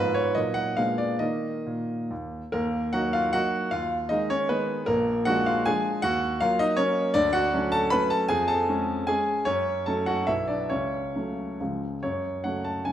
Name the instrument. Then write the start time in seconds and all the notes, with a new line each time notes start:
grand piano
Already playing: G#2 F3 B3 B4
0.00 F4
0.14 C#5
0.35 A#2 F#3 A#3 D#4 D#5
0.54 F#5
0.77 A#2 G#3 B3 D4 F5
0.98 D5
1.19 D#3 A#3 D#4 D#5
1.66 A#2
2.11 D#2
2.52 D#2 A#3 A#4
2.93 F#3 A#3 D#4 F#4 F#5
3.13 F4 F5
3.33 F#3 A#3 D#4 F#4 F#5
3.71 D#2 F4 F5
4.09 D#3 G#3 D#4 D#5
4.30 C#4 C#5
4.49 D#3 G#3 B3 D#4 B4
4.86 A#1 A#3 A#4
5.25 F3 G#3 D4 F#4 F#5
5.46 F4 F5
5.66 F3 G#3 D4 G#4 G#5
6.02 D#2 F#4 F#5
6.41 F#3 A#3 F4 F5
6.59 D#4 D#5
6.77 F#3 A#3 C#4 C#5
7.14 D2 D4 D5
7.33 F#4 F#5
7.54 F#3 A3 C#4
7.72 A4 A5
7.90 F#3 A3 C#4 B4 B5
8.10 A4 A5
8.29 F2 G#4 G#5
8.48 A4 A5
8.68 G#3 C#4
9.07 G#3 C#4 G#4 G#5
9.45 F#2 C#4 C#5
9.86 F#3 A3 C#4 A4 A5
10.06 F#4 F#5
10.27 B1 F#3 B3 E4 E5
10.48 D4 D5
10.70 C#2 C#4 C#5
11.16 C#3 F#3 A3
11.60 C#2 C#3 F3 G#3
12.03 F#2 C#5
12.44 C#3 F#3 A3 F#5
12.65 A5
12.85 C#3 F#3 A3 G#5